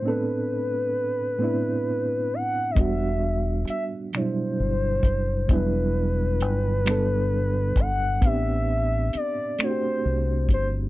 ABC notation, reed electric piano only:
X:1
M:6/8
L:1/8
Q:3/8=44
K:Ador
V:1 name="Reed electric piano"
[A,,B,CDA]2 z [A,,B,CDE]2 z | [G,B,DF]2 z [B,,F,G,DE]2 z | [F,G,B,DE]2 z [G,B,DA]2 z | [B,CDG]2 z [A,CDFG]2 z |]